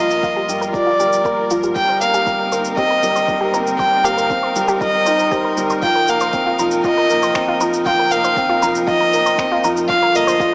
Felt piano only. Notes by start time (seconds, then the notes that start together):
Already playing: F3 G3 A#3
0.23 F3
0.49 G3
0.75 F3
1.00 G3
1.25 A#3
1.51 F3
1.76 G3
2.01 A#3
2.26 G3
2.52 A#3
2.78 C4
3.03 G3
3.28 G3
3.54 A#3
3.79 G3
4.05 A#3
4.31 C4
4.56 G3
4.81 G3
5.07 D#4
5.32 C5
5.57 G3
5.83 F3
6.08 A#3
6.34 C4
6.59 F3
6.85 F3
7.10 A#3
7.35 C4
7.61 F3
7.86 F3
8.12 A#3
8.38 C4
8.63 F3
8.88 F3
9.14 A#3
9.39 C4
9.64 F3
9.90 F3
10.15 A#3
10.41 F3